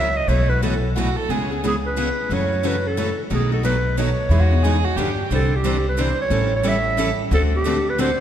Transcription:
Already playing: upright bass C#2, clarinet E5
0.16 clarinet D#5
0.28 upright bass B1, steel-string acoustic guitar B2 E3 A3 E4 F#4 B4, clarinet C#5
0.49 steel-string acoustic guitar A3 E4 F#4, clarinet B4
0.62 steel-string acoustic guitar B2 E3 A3 E4 F#4 B4, clarinet A4
0.96 steel-string acoustic guitar B2 E3 A3 E4 F#4 B4, violin F#4
1.16 violin A4
1.29 upright bass C#2, steel-string acoustic guitar C#3 E3 G#3 B3 C#4 E4 G#4, violin G#4
1.51 steel-string acoustic guitar B3 C#4 G#4
1.64 steel-string acoustic guitar C#3 E3 G#3 B3 C#4 E4 G#4, clarinet G#4
1.86 clarinet B4
1.97 steel-string acoustic guitar C#3 E3 G#3 B3 C#4 E4 G#4
2.29 upright bass F#2, steel-string acoustic guitar C#3 E3 F#3 A3 C#4 E4 F#4 A4, clarinet C#5
2.52 steel-string acoustic guitar A3 C#4 F#4
2.63 steel-string acoustic guitar C#3 E3 F#3 A3 C#4 E4 F#4 A4, clarinet B4
2.87 clarinet A4
2.97 steel-string acoustic guitar C#3 E3 F#3 A3 C#4 E4 F#4 A4
3.30 upright bass B1, steel-string acoustic guitar B2 D#3 F#3 A3 B3 D#4 F#4 A4, clarinet G#4
3.52 steel-string acoustic guitar A3 D#4 F#4, clarinet A4
3.63 steel-string acoustic guitar B2 D#3 F#3 A3 B3 D#4 F#4 A4, clarinet B4
3.97 steel-string acoustic guitar B2 D#3 F#3 A3 B3 D#4 F#4 A4, clarinet C#5
4.29 upright bass E2, steel-string acoustic guitar E3 G#3 B3 D#4 G#4, violin E4
4.40 violin F#4
4.51 steel-string acoustic guitar B3 D#4 G#4
4.63 steel-string acoustic guitar E3 G#3 B3 D#4 G#4, violin G#4
4.85 violin F#4
4.96 upright bass G2, steel-string acoustic guitar D3 F3 B3 D4 G4, violin G4
5.30 upright bass C2, steel-string acoustic guitar C3 D3 E3 G3 C4 D4 E4 C5
5.35 clarinet A4
5.56 clarinet G4
5.64 steel-string acoustic guitar C3 D3 E3 G3 C4 D4 E4 C5
5.89 clarinet B4
5.97 steel-string acoustic guitar C3 D3 E3 G3 C4 D4 E4 C5
6.02 clarinet C5
6.21 clarinet C#5
6.30 upright bass A1, steel-string acoustic guitar E3 G3 C#4 E4 A4
6.56 clarinet C#5
6.64 steel-string acoustic guitar E3 G3 C#4 E4 A4, clarinet E5
6.97 steel-string acoustic guitar E3 G3 C#4 E4 A4
7.31 upright bass D2, steel-string acoustic guitar D3 A3 C4 F#4 A4, clarinet A4
7.56 clarinet G4
7.66 steel-string acoustic guitar D3 A3 C4 F#4 A4
7.90 clarinet B4
7.98 steel-string acoustic guitar D3 A3 C4 F#4 A4, clarinet C5

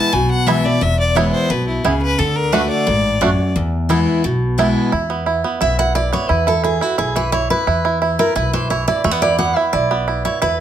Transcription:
Already playing: steel-string acoustic guitar E3 G#3 B3 E4, fiddle A5
0.13 upright bass B1, steel-string acoustic guitar B2, fiddle G#5
0.31 fiddle F#5
0.46 steel-string acoustic guitar E3 G#3 B3 E4, five-string banjo B3 E4, fiddle E5
0.64 steel-string acoustic guitar B3 E4, fiddle D5
0.81 upright bass E1, steel-string acoustic guitar E2, fiddle E5
1.00 fiddle D5
1.15 steel-string acoustic guitar E3 G#3 B3 E4, five-string banjo B3 E4, fiddle C#5
1.33 fiddle C5
1.50 upright bass B1, steel-string acoustic guitar B2, fiddle B4
1.68 fiddle E4
1.84 upright bass C#2, steel-string acoustic guitar C#3, five-string banjo B3 E4, fiddle G#4
2.02 fiddle B4
2.18 upright bass D2, steel-string acoustic guitar D3, fiddle A4
2.36 fiddle A#4
2.52 steel-string acoustic guitar D3 A3 D4 F#4, five-string banjo A3 D4 F#4, fiddle B4
2.70 fiddle D5
2.87 upright bass A1, steel-string acoustic guitar G#2
3.21 steel-string acoustic guitar F#2, five-string banjo A3 D4 F#4
3.56 steel-string acoustic guitar E2, upright bass E2
3.89 steel-string acoustic guitar E3 G#3 B3 E4, five-string banjo B3 E4
4.24 upright bass B1, steel-string acoustic guitar B2
4.58 steel-string acoustic guitar E3 G#3 B3 E4, five-string banjo B3 E4
4.92 upright bass E2, five-string banjo E4
5.10 five-string banjo B3
5.26 five-string banjo E4
5.44 five-string banjo B3
5.61 upright bass B1, five-string banjo E4, steel-string acoustic guitar E5
5.79 five-string banjo E4, steel-string acoustic guitar F#5
5.95 five-string banjo E4, steel-string acoustic guitar D5
6.12 five-string banjo B3, steel-string acoustic guitar C#5
6.29 upright bass E2, five-string banjo E4, steel-string acoustic guitar B4
6.47 five-string banjo E4, steel-string acoustic guitar A4
6.64 five-string banjo E4, steel-string acoustic guitar G#4
6.81 five-string banjo E4, steel-string acoustic guitar F#4
6.98 upright bass B1, five-string banjo E4, steel-string acoustic guitar G#4
7.16 five-string banjo E3, steel-string acoustic guitar B4
7.32 five-string banjo E4, steel-string acoustic guitar C#5
7.50 five-string banjo E4, steel-string acoustic guitar B4
7.67 upright bass E2, five-string banjo E4
7.85 five-string banjo E4
8.02 five-string banjo E4
8.19 five-string banjo E4, steel-string acoustic guitar A#4
8.36 upright bass B1, five-string banjo E4, steel-string acoustic guitar B4
8.53 five-string banjo E3, steel-string acoustic guitar C5
8.70 five-string banjo E4, steel-string acoustic guitar C#5
8.88 five-string banjo E4, steel-string acoustic guitar D5
9.04 upright bass E2, five-string banjo A3, steel-string acoustic guitar E5
9.11 five-string banjo B3
9.22 five-string banjo E4, steel-string acoustic guitar D5
9.38 five-string banjo B3, steel-string acoustic guitar F#5
9.56 five-string banjo E4, steel-string acoustic guitar E5
9.73 upright bass B1, five-string banjo E4, steel-string acoustic guitar D5
9.91 five-string banjo B3
10.08 five-string banjo E4
10.25 five-string banjo E4, steel-string acoustic guitar C#5
10.42 upright bass E2, five-string banjo E4, steel-string acoustic guitar B4

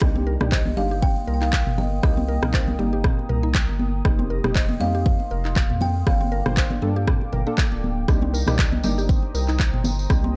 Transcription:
0.01 analog synth bass C2, analog synth pad A#3 G5 C6 D#6, synth stab A#3 D4 D#4 G4, synth arpeggio sound C4, kick, cross-stick, muted conga
0.15 synth arpeggio sound C4, high conga
0.27 synth arpeggio sound A#4
0.40 analog synth bass C2, synth stab A#3 D4 D#4 G4, cross-stick, mid tom, muted conga, high conga, low conga
0.52 synth arpeggio sound C5, kalimba D#5, kick, clap
0.65 high conga, low conga
0.77 analog synth bass G1, synth arpeggio sound G3, synth stab A#3 D4 D#4 G4, kalimba F5, muted conga, high conga
0.91 synth arpeggio sound G4
1.02 synth arpeggio sound C4, kalimba G5, kick
1.16 muted conga
1.27 analog synth bass C2, synth arpeggio sound A#4
1.34 kalimba G5
1.41 synth arpeggio sound D#4, kalimba F5, clap
1.53 kick, clap
1.67 analog synth bass G1, mid tom, muted conga
1.78 kalimba D#5, high conga, low conga
2.03 analog synth bass C2, synth stab A#3 C4 D#4 G4, synth arpeggio sound C4, kalimba D#5, analog synth pad A#5, kick, cross-stick, muted conga
2.17 synth arpeggio sound C4, high conga
2.28 synth arpeggio sound A#4
2.42 analog synth bass C2, synth stab A#3 C4 D#4 A#4, cross-stick, mid tom, muted conga, high conga, low conga
2.54 synth arpeggio sound C5, kick, clap
2.68 high conga, low conga
2.79 analog synth bass G1, synth arpeggio sound G3, synth stab A#3 C4 D#4 G4, muted conga, high conga
2.93 synth arpeggio sound G4
3.04 synth arpeggio sound C4, kick, cross-stick, mid tom
3.19 muted conga
3.29 analog synth bass C2, synth arpeggio sound A#4, mid tom
3.43 synth arpeggio sound D#4
3.55 kick, clap
3.69 analog synth bass G1, muted conga
3.79 high conga
4.05 analog synth bass F1, synth stab A#3 C4 D#4 G4, synth arpeggio sound C4, analog synth pad F5 C6, kick, cross-stick, muted conga
4.19 synth arpeggio sound C4, high conga
4.30 synth arpeggio sound A#4
4.44 analog synth bass F1, synth stab A#3 C4 D#4 G4, cross-stick, mid tom, muted conga, high conga, low conga
4.55 synth arpeggio sound C5, kalimba D#5, kick, clap
4.69 high conga, low conga
4.80 analog synth bass F2, synth arpeggio sound G3, synth stab A#3 C4 D#4 G4, kalimba F5, muted conga, high conga
4.95 synth arpeggio sound G4
5.06 synth arpeggio sound C4, kick
5.20 muted conga
5.31 analog synth bass F1, synth arpeggio sound A#4
5.45 synth arpeggio sound D#4, clap
5.56 kick, clap
5.70 analog synth bass F2, mid tom, muted conga
5.81 kalimba G5, high conga, low conga
6.06 analog synth bass G1, synth stab A#3 D4 F4 A4, synth arpeggio sound C4, kalimba F5, analog synth pad G5 D6, kick, cross-stick, muted conga
6.21 synth arpeggio sound C4, high conga
6.32 synth arpeggio sound A#4
6.46 analog synth bass G1, synth stab A#3 D4 F4 C5, cross-stick, mid tom, muted conga, high conga, low conga
6.57 synth arpeggio sound C5, kick, clap
6.70 high conga, low conga
6.82 analog synth bass G2, synth arpeggio sound G3, synth stab A#3 D4 F4 A4, muted conga, high conga
6.96 synth arpeggio sound G4
7.08 synth arpeggio sound C4, kick, cross-stick, mid tom
7.22 muted conga
7.33 analog synth bass G1, synth arpeggio sound A#4, mid tom, low conga
7.47 synth stab A#3 D4 F4 A4, synth arpeggio sound D4
7.58 kick, clap
7.72 analog synth bass D1, muted conga
7.84 high conga
8.08 analog synth bass C2, synth stab A#3 D4 D#4 G4, synth arpeggio sound C4, analog synth pad C5 A#5 D#6, kick, cross-stick, tambourine, muted conga
8.22 synth arpeggio sound C4, high conga
8.34 synth arpeggio sound A#4, tambourine
8.47 analog synth bass C2, synth stab A#3 D4 D#4 G4, cross-stick, mid tom, tambourine, muted conga, high conga, low conga
8.59 synth arpeggio sound G3, kick, clap, tambourine
8.72 high conga, low conga
8.83 analog synth bass G1, synth arpeggio sound G3, synth stab A#3 D4 D#4 G4, tambourine, muted conga, high conga
8.98 synth arpeggio sound G4, tambourine
9.09 synth arpeggio sound C4, kick, tambourine
9.23 muted conga
9.34 analog synth bass C2, synth arpeggio sound A#4, tambourine
9.48 synth arpeggio sound D#4, clap, tambourine
9.60 kick, clap, tambourine
9.74 analog synth bass G1, mid tom, muted conga
9.84 tambourine, high conga, low conga
9.99 tambourine
10.10 analog synth bass C2, synth stab A#3 D4 D#4 G4, synth arpeggio sound C4, kick, cross-stick, tambourine, muted conga
10.24 synth arpeggio sound C4, high conga

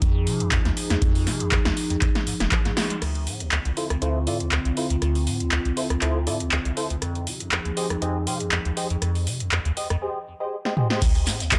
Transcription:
Already playing: analog synth pad F3 D#4 G#4
0.02 acid bass F2, kick, closed hi-hat
0.27 acid bass C3, open hi-hat
0.40 acid bass F2, closed hi-hat
0.52 acid bass F2, kick, clap, closed hi-hat
0.65 acid bass D#2, snare, closed hi-hat
0.77 open hi-hat
0.90 acid bass F2, snare, closed hi-hat
1.02 acid bass F2, kick, closed hi-hat
1.15 open hi-hat
1.27 acid bass C3, snare, open hi-hat
1.40 acid bass F2, closed hi-hat
1.52 acid bass F2, kick, clap, closed hi-hat
1.65 acid bass D#2, snare, closed hi-hat
1.77 open hi-hat
1.90 acid bass F2, closed hi-hat
2.02 acid bass F2, kick, clap, closed hi-hat
2.15 snare, closed hi-hat
2.27 acid bass G#2, open hi-hat
2.40 acid bass F1, snare, closed hi-hat
2.52 acid bass F3, kick, clap, closed hi-hat
2.65 acid bass G#2, snare, closed hi-hat
2.77 snare, open hi-hat
2.90 acid bass G#3, closed hi-hat
3.02 acid bass D2, analog synth pad D3 C4 F4, cross-stick, closed hi-hat, crash
3.15 closed hi-hat
3.27 acid bass A2, open hi-hat
3.40 acid bass D2, closed hi-hat
3.52 acid bass D2, clap, closed hi-hat
3.65 acid bass C2, closed hi-hat
3.77 synth stab E4 F4 A4 C5, open hi-hat
3.90 acid bass D2, cross-stick, closed hi-hat
4.02 acid bass D2, synth stab E4 F4 A4 C5, closed hi-hat
4.27 acid bass A2, synth stab E4 F4 A4 D5, open hi-hat
4.40 acid bass D2, closed hi-hat
4.52 acid bass D2, clap, closed hi-hat
4.65 acid bass C2, closed hi-hat
4.77 synth stab E4 F4 A4 C5, open hi-hat
4.90 acid bass D2, closed hi-hat
5.02 acid bass D2, cross-stick, closed hi-hat
5.15 open hi-hat
5.27 acid bass A2, open hi-hat
5.40 acid bass D2, closed hi-hat
5.52 acid bass D2, clap, closed hi-hat
5.65 acid bass C2, closed hi-hat
5.77 synth stab E4 F4 A4 C5, open hi-hat
5.90 acid bass D2, cross-stick, closed hi-hat
6.02 acid bass D2, synth stab E4 F4 A4 C5, clap, closed hi-hat
6.27 acid bass A2, synth stab E4 F4 A4 D5, open hi-hat
6.40 acid bass D2, closed hi-hat
6.52 acid bass D2, clap, closed hi-hat
6.65 acid bass C2, closed hi-hat
6.77 synth stab E4 F4 A4 C5, open hi-hat
6.90 acid bass D2, closed hi-hat
7.02 acid bass F2, analog synth pad F3 D#4 G#4, cross-stick, closed hi-hat
7.15 closed hi-hat
7.27 acid bass C3, open hi-hat
7.40 acid bass F2, closed hi-hat
7.52 acid bass F2, clap, closed hi-hat
7.65 acid bass D#2, closed hi-hat
7.77 synth stab G4 G#4 C5 D#5, open hi-hat
7.90 acid bass F2, cross-stick, closed hi-hat
8.02 acid bass F2, synth stab G4 G#4 C5 D#5, closed hi-hat
8.27 acid bass C3, synth stab G4 G#4 C5 F5, open hi-hat
8.40 acid bass F2, closed hi-hat
8.52 acid bass F2, clap, closed hi-hat
8.65 acid bass D#2, closed hi-hat
8.77 synth stab G4 G#4 C5 D#5, open hi-hat
8.90 acid bass F2, closed hi-hat
9.02 acid bass F2, cross-stick, closed hi-hat
9.15 open hi-hat
9.27 acid bass C3, open hi-hat
9.40 acid bass F2, closed hi-hat
9.52 acid bass F2, clap, closed hi-hat
9.65 acid bass D#2, closed hi-hat
9.77 synth stab G4 G#4 C5 D#5, open hi-hat
9.90 acid bass F2, cross-stick, closed hi-hat
10.02 synth stab G4 G#4 C5 D#5
10.40 synth stab G4 G#4 C5 D#5
10.65 synth stab G4 G#4 C5 D#5, snare
10.77 synth stab G4 G#4 C5 D#5, mid tom
10.90 synth stab G4 G#4 C5 D#5, snare
11.02 acid bass D2, analog synth pad D3 C4 F4, kick, closed hi-hat, crash, shekere
11.15 closed hi-hat, shekere
11.27 acid bass A2, snare, open hi-hat, shekere
11.40 acid bass D2, closed hi-hat, shekere
11.52 acid bass D2, kick, clap, closed hi-hat, shekere

